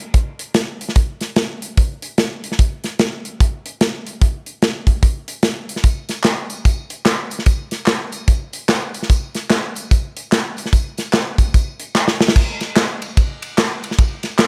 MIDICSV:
0, 0, Header, 1, 2, 480
1, 0, Start_track
1, 0, Tempo, 407332
1, 1129, Time_signature, 4, 2, 24, 8
1, 17053, End_track
2, 0, Start_track
2, 0, Title_t, "Drums"
2, 165, Note_on_c, 9, 42, 83
2, 167, Note_on_c, 9, 36, 104
2, 282, Note_off_c, 9, 42, 0
2, 284, Note_off_c, 9, 36, 0
2, 463, Note_on_c, 9, 42, 76
2, 581, Note_off_c, 9, 42, 0
2, 640, Note_on_c, 9, 42, 89
2, 644, Note_on_c, 9, 38, 100
2, 758, Note_off_c, 9, 42, 0
2, 762, Note_off_c, 9, 38, 0
2, 954, Note_on_c, 9, 42, 71
2, 1044, Note_on_c, 9, 38, 37
2, 1072, Note_off_c, 9, 42, 0
2, 1127, Note_on_c, 9, 42, 84
2, 1130, Note_on_c, 9, 36, 100
2, 1162, Note_off_c, 9, 38, 0
2, 1245, Note_off_c, 9, 42, 0
2, 1248, Note_off_c, 9, 36, 0
2, 1421, Note_on_c, 9, 42, 64
2, 1430, Note_on_c, 9, 38, 36
2, 1539, Note_off_c, 9, 42, 0
2, 1547, Note_off_c, 9, 38, 0
2, 1603, Note_on_c, 9, 42, 67
2, 1608, Note_on_c, 9, 38, 115
2, 1721, Note_off_c, 9, 42, 0
2, 1726, Note_off_c, 9, 38, 0
2, 1910, Note_on_c, 9, 42, 67
2, 2028, Note_off_c, 9, 42, 0
2, 2090, Note_on_c, 9, 42, 81
2, 2091, Note_on_c, 9, 36, 107
2, 2208, Note_off_c, 9, 42, 0
2, 2209, Note_off_c, 9, 36, 0
2, 2385, Note_on_c, 9, 42, 80
2, 2502, Note_off_c, 9, 42, 0
2, 2567, Note_on_c, 9, 42, 83
2, 2571, Note_on_c, 9, 38, 105
2, 2685, Note_off_c, 9, 42, 0
2, 2689, Note_off_c, 9, 38, 0
2, 2872, Note_on_c, 9, 42, 74
2, 2966, Note_on_c, 9, 38, 36
2, 2990, Note_off_c, 9, 42, 0
2, 3050, Note_on_c, 9, 42, 84
2, 3053, Note_on_c, 9, 36, 103
2, 3083, Note_off_c, 9, 38, 0
2, 3168, Note_off_c, 9, 42, 0
2, 3170, Note_off_c, 9, 36, 0
2, 3343, Note_on_c, 9, 42, 62
2, 3351, Note_on_c, 9, 38, 35
2, 3460, Note_off_c, 9, 42, 0
2, 3469, Note_off_c, 9, 38, 0
2, 3525, Note_on_c, 9, 42, 68
2, 3530, Note_on_c, 9, 38, 109
2, 3643, Note_off_c, 9, 42, 0
2, 3647, Note_off_c, 9, 38, 0
2, 3830, Note_on_c, 9, 42, 69
2, 3948, Note_off_c, 9, 42, 0
2, 4012, Note_on_c, 9, 36, 108
2, 4013, Note_on_c, 9, 42, 86
2, 4129, Note_off_c, 9, 36, 0
2, 4131, Note_off_c, 9, 42, 0
2, 4309, Note_on_c, 9, 42, 86
2, 4427, Note_off_c, 9, 42, 0
2, 4487, Note_on_c, 9, 42, 81
2, 4491, Note_on_c, 9, 38, 112
2, 4605, Note_off_c, 9, 42, 0
2, 4609, Note_off_c, 9, 38, 0
2, 4791, Note_on_c, 9, 42, 71
2, 4909, Note_off_c, 9, 42, 0
2, 4967, Note_on_c, 9, 36, 103
2, 4967, Note_on_c, 9, 42, 83
2, 5085, Note_off_c, 9, 36, 0
2, 5085, Note_off_c, 9, 42, 0
2, 5260, Note_on_c, 9, 42, 60
2, 5378, Note_off_c, 9, 42, 0
2, 5446, Note_on_c, 9, 42, 65
2, 5451, Note_on_c, 9, 38, 102
2, 5564, Note_off_c, 9, 42, 0
2, 5568, Note_off_c, 9, 38, 0
2, 5737, Note_on_c, 9, 36, 82
2, 5746, Note_on_c, 9, 42, 69
2, 5855, Note_off_c, 9, 36, 0
2, 5864, Note_off_c, 9, 42, 0
2, 5924, Note_on_c, 9, 36, 106
2, 5926, Note_on_c, 9, 42, 88
2, 6042, Note_off_c, 9, 36, 0
2, 6044, Note_off_c, 9, 42, 0
2, 6221, Note_on_c, 9, 42, 80
2, 6339, Note_off_c, 9, 42, 0
2, 6395, Note_on_c, 9, 42, 88
2, 6399, Note_on_c, 9, 38, 100
2, 6513, Note_off_c, 9, 42, 0
2, 6517, Note_off_c, 9, 38, 0
2, 6707, Note_on_c, 9, 42, 67
2, 6792, Note_on_c, 9, 38, 35
2, 6825, Note_off_c, 9, 42, 0
2, 6878, Note_on_c, 9, 42, 84
2, 6881, Note_on_c, 9, 36, 99
2, 6883, Note_on_c, 9, 54, 77
2, 6910, Note_off_c, 9, 38, 0
2, 6996, Note_off_c, 9, 42, 0
2, 6998, Note_off_c, 9, 36, 0
2, 7001, Note_off_c, 9, 54, 0
2, 7173, Note_on_c, 9, 54, 59
2, 7174, Note_on_c, 9, 42, 69
2, 7182, Note_on_c, 9, 38, 34
2, 7291, Note_off_c, 9, 42, 0
2, 7291, Note_off_c, 9, 54, 0
2, 7300, Note_off_c, 9, 38, 0
2, 7345, Note_on_c, 9, 39, 80
2, 7345, Note_on_c, 9, 54, 81
2, 7357, Note_on_c, 9, 42, 73
2, 7361, Note_on_c, 9, 38, 116
2, 7462, Note_off_c, 9, 39, 0
2, 7462, Note_off_c, 9, 54, 0
2, 7475, Note_off_c, 9, 42, 0
2, 7479, Note_off_c, 9, 38, 0
2, 7654, Note_on_c, 9, 54, 78
2, 7659, Note_on_c, 9, 42, 68
2, 7772, Note_off_c, 9, 54, 0
2, 7776, Note_off_c, 9, 42, 0
2, 7838, Note_on_c, 9, 54, 78
2, 7839, Note_on_c, 9, 36, 104
2, 7842, Note_on_c, 9, 42, 89
2, 7956, Note_off_c, 9, 54, 0
2, 7957, Note_off_c, 9, 36, 0
2, 7960, Note_off_c, 9, 42, 0
2, 8127, Note_on_c, 9, 54, 50
2, 8133, Note_on_c, 9, 42, 81
2, 8245, Note_off_c, 9, 54, 0
2, 8251, Note_off_c, 9, 42, 0
2, 8311, Note_on_c, 9, 42, 85
2, 8314, Note_on_c, 9, 39, 86
2, 8314, Note_on_c, 9, 54, 85
2, 8315, Note_on_c, 9, 38, 107
2, 8429, Note_off_c, 9, 42, 0
2, 8431, Note_off_c, 9, 39, 0
2, 8431, Note_off_c, 9, 54, 0
2, 8432, Note_off_c, 9, 38, 0
2, 8607, Note_on_c, 9, 54, 57
2, 8618, Note_on_c, 9, 42, 68
2, 8706, Note_on_c, 9, 38, 38
2, 8724, Note_off_c, 9, 54, 0
2, 8736, Note_off_c, 9, 42, 0
2, 8791, Note_on_c, 9, 42, 85
2, 8796, Note_on_c, 9, 36, 107
2, 8799, Note_on_c, 9, 54, 84
2, 8824, Note_off_c, 9, 38, 0
2, 8909, Note_off_c, 9, 42, 0
2, 8914, Note_off_c, 9, 36, 0
2, 8917, Note_off_c, 9, 54, 0
2, 9088, Note_on_c, 9, 42, 65
2, 9088, Note_on_c, 9, 54, 57
2, 9096, Note_on_c, 9, 38, 36
2, 9206, Note_off_c, 9, 42, 0
2, 9206, Note_off_c, 9, 54, 0
2, 9214, Note_off_c, 9, 38, 0
2, 9261, Note_on_c, 9, 39, 83
2, 9261, Note_on_c, 9, 54, 79
2, 9273, Note_on_c, 9, 42, 65
2, 9278, Note_on_c, 9, 38, 108
2, 9379, Note_off_c, 9, 39, 0
2, 9379, Note_off_c, 9, 54, 0
2, 9391, Note_off_c, 9, 42, 0
2, 9396, Note_off_c, 9, 38, 0
2, 9567, Note_on_c, 9, 54, 72
2, 9574, Note_on_c, 9, 42, 69
2, 9685, Note_off_c, 9, 54, 0
2, 9692, Note_off_c, 9, 42, 0
2, 9753, Note_on_c, 9, 54, 83
2, 9754, Note_on_c, 9, 42, 87
2, 9755, Note_on_c, 9, 36, 104
2, 9871, Note_off_c, 9, 54, 0
2, 9872, Note_off_c, 9, 42, 0
2, 9873, Note_off_c, 9, 36, 0
2, 10047, Note_on_c, 9, 54, 48
2, 10055, Note_on_c, 9, 42, 84
2, 10165, Note_off_c, 9, 54, 0
2, 10173, Note_off_c, 9, 42, 0
2, 10234, Note_on_c, 9, 39, 92
2, 10234, Note_on_c, 9, 42, 83
2, 10234, Note_on_c, 9, 54, 86
2, 10237, Note_on_c, 9, 38, 99
2, 10351, Note_off_c, 9, 42, 0
2, 10352, Note_off_c, 9, 39, 0
2, 10352, Note_off_c, 9, 54, 0
2, 10355, Note_off_c, 9, 38, 0
2, 10532, Note_on_c, 9, 54, 54
2, 10541, Note_on_c, 9, 42, 74
2, 10636, Note_on_c, 9, 38, 36
2, 10650, Note_off_c, 9, 54, 0
2, 10659, Note_off_c, 9, 42, 0
2, 10720, Note_on_c, 9, 36, 105
2, 10721, Note_on_c, 9, 42, 89
2, 10726, Note_on_c, 9, 54, 89
2, 10754, Note_off_c, 9, 38, 0
2, 10838, Note_off_c, 9, 36, 0
2, 10838, Note_off_c, 9, 42, 0
2, 10844, Note_off_c, 9, 54, 0
2, 11013, Note_on_c, 9, 42, 64
2, 11018, Note_on_c, 9, 54, 62
2, 11021, Note_on_c, 9, 38, 36
2, 11131, Note_off_c, 9, 42, 0
2, 11136, Note_off_c, 9, 54, 0
2, 11139, Note_off_c, 9, 38, 0
2, 11194, Note_on_c, 9, 39, 84
2, 11194, Note_on_c, 9, 42, 69
2, 11194, Note_on_c, 9, 54, 78
2, 11199, Note_on_c, 9, 38, 109
2, 11312, Note_off_c, 9, 39, 0
2, 11312, Note_off_c, 9, 42, 0
2, 11312, Note_off_c, 9, 54, 0
2, 11317, Note_off_c, 9, 38, 0
2, 11494, Note_on_c, 9, 54, 75
2, 11506, Note_on_c, 9, 42, 70
2, 11611, Note_off_c, 9, 54, 0
2, 11624, Note_off_c, 9, 42, 0
2, 11681, Note_on_c, 9, 36, 104
2, 11681, Note_on_c, 9, 54, 77
2, 11682, Note_on_c, 9, 42, 87
2, 11799, Note_off_c, 9, 36, 0
2, 11799, Note_off_c, 9, 54, 0
2, 11800, Note_off_c, 9, 42, 0
2, 11976, Note_on_c, 9, 54, 50
2, 11979, Note_on_c, 9, 42, 82
2, 12094, Note_off_c, 9, 54, 0
2, 12097, Note_off_c, 9, 42, 0
2, 12159, Note_on_c, 9, 39, 83
2, 12159, Note_on_c, 9, 54, 93
2, 12162, Note_on_c, 9, 42, 88
2, 12166, Note_on_c, 9, 38, 109
2, 12276, Note_off_c, 9, 39, 0
2, 12276, Note_off_c, 9, 54, 0
2, 12280, Note_off_c, 9, 42, 0
2, 12284, Note_off_c, 9, 38, 0
2, 12452, Note_on_c, 9, 54, 55
2, 12469, Note_on_c, 9, 42, 71
2, 12557, Note_on_c, 9, 38, 35
2, 12570, Note_off_c, 9, 54, 0
2, 12586, Note_off_c, 9, 42, 0
2, 12642, Note_on_c, 9, 36, 99
2, 12644, Note_on_c, 9, 54, 84
2, 12645, Note_on_c, 9, 42, 79
2, 12675, Note_off_c, 9, 38, 0
2, 12760, Note_off_c, 9, 36, 0
2, 12762, Note_off_c, 9, 54, 0
2, 12763, Note_off_c, 9, 42, 0
2, 12932, Note_on_c, 9, 54, 60
2, 12938, Note_on_c, 9, 42, 62
2, 12946, Note_on_c, 9, 38, 34
2, 13050, Note_off_c, 9, 54, 0
2, 13055, Note_off_c, 9, 42, 0
2, 13064, Note_off_c, 9, 38, 0
2, 13111, Note_on_c, 9, 39, 85
2, 13111, Note_on_c, 9, 54, 83
2, 13118, Note_on_c, 9, 42, 67
2, 13123, Note_on_c, 9, 38, 113
2, 13229, Note_off_c, 9, 39, 0
2, 13229, Note_off_c, 9, 54, 0
2, 13236, Note_off_c, 9, 42, 0
2, 13240, Note_off_c, 9, 38, 0
2, 13415, Note_on_c, 9, 36, 85
2, 13415, Note_on_c, 9, 54, 73
2, 13422, Note_on_c, 9, 42, 70
2, 13533, Note_off_c, 9, 36, 0
2, 13533, Note_off_c, 9, 54, 0
2, 13540, Note_off_c, 9, 42, 0
2, 13602, Note_on_c, 9, 36, 98
2, 13603, Note_on_c, 9, 42, 86
2, 13607, Note_on_c, 9, 54, 77
2, 13720, Note_off_c, 9, 36, 0
2, 13721, Note_off_c, 9, 42, 0
2, 13725, Note_off_c, 9, 54, 0
2, 13898, Note_on_c, 9, 54, 51
2, 13900, Note_on_c, 9, 42, 83
2, 14016, Note_off_c, 9, 54, 0
2, 14018, Note_off_c, 9, 42, 0
2, 14081, Note_on_c, 9, 38, 59
2, 14087, Note_on_c, 9, 39, 92
2, 14087, Note_on_c, 9, 54, 83
2, 14199, Note_off_c, 9, 38, 0
2, 14205, Note_off_c, 9, 39, 0
2, 14205, Note_off_c, 9, 54, 0
2, 14232, Note_on_c, 9, 38, 64
2, 14349, Note_off_c, 9, 38, 0
2, 14378, Note_on_c, 9, 54, 55
2, 14383, Note_on_c, 9, 38, 92
2, 14475, Note_off_c, 9, 38, 0
2, 14475, Note_on_c, 9, 38, 90
2, 14496, Note_off_c, 9, 54, 0
2, 14564, Note_on_c, 9, 36, 106
2, 14565, Note_on_c, 9, 49, 95
2, 14568, Note_on_c, 9, 54, 84
2, 14593, Note_off_c, 9, 38, 0
2, 14682, Note_off_c, 9, 36, 0
2, 14683, Note_off_c, 9, 49, 0
2, 14686, Note_off_c, 9, 54, 0
2, 14854, Note_on_c, 9, 51, 54
2, 14862, Note_on_c, 9, 38, 35
2, 14862, Note_on_c, 9, 54, 63
2, 14972, Note_off_c, 9, 51, 0
2, 14980, Note_off_c, 9, 38, 0
2, 14980, Note_off_c, 9, 54, 0
2, 15036, Note_on_c, 9, 39, 89
2, 15036, Note_on_c, 9, 54, 87
2, 15037, Note_on_c, 9, 51, 57
2, 15042, Note_on_c, 9, 38, 121
2, 15154, Note_off_c, 9, 39, 0
2, 15154, Note_off_c, 9, 54, 0
2, 15155, Note_off_c, 9, 51, 0
2, 15160, Note_off_c, 9, 38, 0
2, 15341, Note_on_c, 9, 51, 60
2, 15343, Note_on_c, 9, 54, 80
2, 15459, Note_off_c, 9, 51, 0
2, 15461, Note_off_c, 9, 54, 0
2, 15522, Note_on_c, 9, 36, 106
2, 15524, Note_on_c, 9, 51, 77
2, 15527, Note_on_c, 9, 54, 76
2, 15640, Note_off_c, 9, 36, 0
2, 15641, Note_off_c, 9, 51, 0
2, 15645, Note_off_c, 9, 54, 0
2, 15816, Note_on_c, 9, 54, 58
2, 15818, Note_on_c, 9, 51, 74
2, 15934, Note_off_c, 9, 54, 0
2, 15936, Note_off_c, 9, 51, 0
2, 16000, Note_on_c, 9, 51, 73
2, 16001, Note_on_c, 9, 39, 90
2, 16001, Note_on_c, 9, 54, 91
2, 16004, Note_on_c, 9, 38, 108
2, 16118, Note_off_c, 9, 51, 0
2, 16119, Note_off_c, 9, 39, 0
2, 16119, Note_off_c, 9, 54, 0
2, 16122, Note_off_c, 9, 38, 0
2, 16292, Note_on_c, 9, 54, 51
2, 16305, Note_on_c, 9, 51, 62
2, 16394, Note_on_c, 9, 38, 40
2, 16410, Note_off_c, 9, 54, 0
2, 16423, Note_off_c, 9, 51, 0
2, 16474, Note_on_c, 9, 54, 81
2, 16479, Note_on_c, 9, 51, 70
2, 16481, Note_on_c, 9, 36, 109
2, 16512, Note_off_c, 9, 38, 0
2, 16592, Note_off_c, 9, 54, 0
2, 16597, Note_off_c, 9, 51, 0
2, 16598, Note_off_c, 9, 36, 0
2, 16769, Note_on_c, 9, 51, 55
2, 16773, Note_on_c, 9, 54, 60
2, 16777, Note_on_c, 9, 38, 36
2, 16887, Note_off_c, 9, 51, 0
2, 16891, Note_off_c, 9, 54, 0
2, 16895, Note_off_c, 9, 38, 0
2, 16949, Note_on_c, 9, 39, 87
2, 16949, Note_on_c, 9, 54, 91
2, 16951, Note_on_c, 9, 51, 55
2, 16956, Note_on_c, 9, 38, 115
2, 17053, Note_off_c, 9, 38, 0
2, 17053, Note_off_c, 9, 39, 0
2, 17053, Note_off_c, 9, 51, 0
2, 17053, Note_off_c, 9, 54, 0
2, 17053, End_track
0, 0, End_of_file